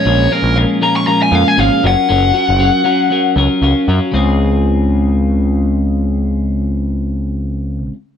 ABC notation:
X:1
M:4/4
L:1/16
Q:1/4=117
K:Db
V:1 name="Lead electric guitar"
d2 B2 z2 b d' b a f a f2 g2- | g8- g2 z6 | z16 | z16 |]
V:2 name="Clean electric guitar"
[B,,F,A,DFB]2 [B,,F,A,DFB]2 [B,,F,A,DFB]2 [B,,F,A,DFB]2 [B,,F,A,DFB]2 [B,,F,A,DFB]2 [B,,F,A,DFB]2 [G,DFB]2 | [G,DFB]2 [G,DFB]2 [G,DFB]2 [G,DFB]2 [G,DFB]2 [G,DFB]2 [G,DFB]2 [G,DFB]2 | [D,A,CFA]16- | [D,A,CFA]16 |]
V:3 name="Picked electric bass" clef=bass
B,,,2 z B,,,2 z4 z F,, z A,,, z G,,, z | G,,,2 z G,,,2 z4 z D,, z D,, z G,, z | D,,16- | D,,16 |]